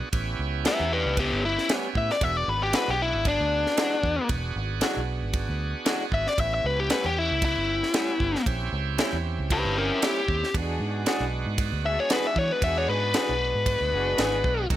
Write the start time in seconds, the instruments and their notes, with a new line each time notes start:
0.12 fingered electric bass A1, tonewheel organ B3 C#4 E4 G4, kick, ride bell
0.39 fingered electric bass C#2
0.65 clean electric guitar A2 G3 B3 C#4, lead electric guitar G4 E5, snare, ride bell
0.80 fingered electric bass E2
0.92 lead electric guitar G4 B4
1.06 fingered electric bass C#2
1.17 lead electric guitar B3 G4, kick, ride bell
1.32 fingered electric bass G1
1.45 lead electric guitar E4
1.58 snare
1.69 clean electric guitar A2 G3 B3 C#4, snare, ride bell
1.95 fingered electric bass A2, lead electric guitar E5, kick
2.10 lead electric guitar D5, snare
2.20 fingered electric bass E1, tonewheel organ B3 D4 F#4 G#4, lead electric guitar E5, kick, ride bell
2.37 lead electric guitar D5
2.48 fingered electric bass G#1, lead electric guitar B4
2.63 lead electric guitar G4
2.73 clean electric guitar E3 G#3 D4 F#4, lead electric guitar B4, snare, ride bell
2.88 fingered electric bass B1, lead electric guitar G4
3.02 lead electric guitar E4
3.14 fingered electric bass G#1
3.25 lead electric guitar D4, kick, ride bell
3.40 fingered electric bass D2
3.66 snare
3.77 clean electric guitar E3 G#3 D4 F#4, snare, ride bell
4.03 fingered electric bass E2, kick
4.29 fingered electric bass E1, kick, ride bell
4.56 fingered electric bass G#1
4.81 clean electric guitar E3 G#3 D4 F#4, snare, ride bell
4.97 fingered electric bass B1
5.23 fingered electric bass G#1
5.33 kick, ride bell
5.49 fingered electric bass D2
5.85 clean electric guitar E3 G#3 D4 F#4, snare, ride bell
6.12 fingered electric bass G#1, lead electric guitar E5, kick
6.27 lead electric guitar D5, snare
6.38 fingered electric bass A1, tonewheel organ B3 C#4 E4 G4, lead electric guitar E5, kick, ride bell
6.54 lead electric guitar E5
6.64 fingered electric bass C#2, lead electric guitar B4
6.80 lead electric guitar G4
6.89 clean electric guitar A2 G3 B3 C#4, lead electric guitar B4, snare, ride bell
7.05 fingered electric bass E2, lead electric guitar G4
7.18 lead electric guitar E4
7.31 fingered electric bass C#2
7.42 lead electric guitar E4, kick, ride bell
7.57 fingered electric bass G1
7.83 snare
7.94 clean electric guitar A2 G3 B3 C#4, snare, ride bell
8.20 fingered electric bass G1, kick
8.35 snare
8.46 fingered electric bass A#1, tonewheel organ C4 C#4 E4 G4, kick, ride bell
8.72 fingered electric bass C#2
8.98 clean electric guitar A#2 G3 C#4 E4, snare, ride bell
9.13 fingered electric bass E2
9.39 fingered electric bass C#2
9.50 lead electric guitar G4 B4, kick, ride bell
9.65 fingered electric bass G1
9.78 lead electric guitar C#4 A#4
10.02 clean electric guitar A#2 G3 C#4 E4, lead electric guitar G4, snare, ride bell
10.28 fingered electric bass D#2, kick
10.43 snare
10.54 fingered electric bass E2, tonewheel organ G#3 B3 D4 F#4, string section D4 F#4 G#4, kick, ride bell
10.80 fingered electric bass G#2
11.06 clean electric guitar E3 D4 F#4 G#4, snare, ride bell
11.20 fingered electric bass B1
11.46 fingered electric bass G#2
11.58 kick, ride bell
11.72 fingered electric bass D2
11.83 string section D4 F#4 G#4, lead electric guitar E5
12.00 lead electric guitar C#5
12.10 clean electric guitar E3 D4 F#4 G#4, lead electric guitar B4, snare, ride bell
12.27 lead electric guitar E5
12.36 fingered electric bass E3, lead electric guitar C#5, kick
12.52 lead electric guitar B4
12.62 fingered electric bass E2, string section D4 F#4 G#4, lead electric guitar E5, kick, ride bell
12.78 lead electric guitar C#5
12.89 fingered electric bass G#2, lead electric guitar B4
13.14 clean electric guitar E3 D4 F#4 G#4, lead electric guitar B4, snare, ride bell
13.29 fingered electric bass B1
13.55 fingered electric bass G#2
13.66 kick, ride bell
13.81 fingered electric bass D2
13.91 fingered electric bass F#1, string section D4 F#4 G#4
14.18 fingered electric bass G#1, clean electric guitar E3 D4 F#4 G#4, snare, ride bell
14.44 fingered electric bass B1, kick
14.70 fingered electric bass B1, tonewheel organ A3 C#4 D#4 F#4, string section C#4 D#4 A4, kick, ride bell